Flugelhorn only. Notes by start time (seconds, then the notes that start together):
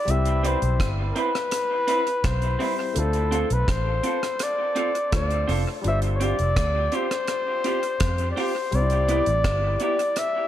Already playing: D5
0.11 E5
0.46 C5
1.11 A#4
1.18 B4
2.25 C5
2.99 A4
3.53 B4
3.70 C5
4.43 D5
5.15 D5
5.88 E5
6.16 C#5
6.23 D5
6.95 C5
8.31 D5
8.39 C5
8.75 D5
9.83 D5
10.19 E5